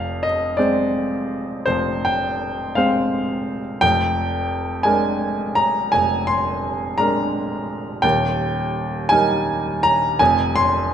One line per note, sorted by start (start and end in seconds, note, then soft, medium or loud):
0.00 1.64 F1 soft
0.00 1.63 F2 soft
0.00 0.24 F5 medium
0.23 0.58 D#5 medium
0.57 1.63 G#3 soft
0.57 1.64 C4 soft
0.57 1.64 C5 soft
0.57 1.66 D5 medium
1.66 3.78 F1 soft
1.66 3.78 F2 soft
1.66 2.05 C5 medium
2.05 2.76 G5 medium
2.75 3.78 G#3 soft
2.75 3.78 C4 soft
2.75 3.78 C5 soft
2.75 3.81 F5 medium
3.81 5.90 F1 soft
3.81 5.90 F2 soft
3.81 4.85 G5 medium
4.83 5.90 G#3 soft
4.83 5.90 D4 soft
4.83 5.90 A#4 soft
4.83 5.57 G#5 medium
5.55 5.93 A#5 medium
5.92 7.99 F1 soft
5.92 7.99 F2 soft
5.92 6.28 G#5 medium
6.27 6.98 C6 medium
6.98 7.99 G#3 soft
6.98 8.00 D4 soft
6.98 8.00 A#4 soft
6.98 8.03 A#5 medium
8.02 10.16 D#1 soft
8.02 10.16 D#2 medium
8.02 9.10 G5 medium
9.09 10.16 G3 soft
9.09 10.16 D#4 soft
9.09 10.17 A#4 soft
9.09 9.83 G#5 medium
9.83 10.20 A#5 medium
10.19 10.94 F1 soft
10.19 10.94 F2 soft
10.19 10.56 G#5 medium
10.56 10.94 C6 medium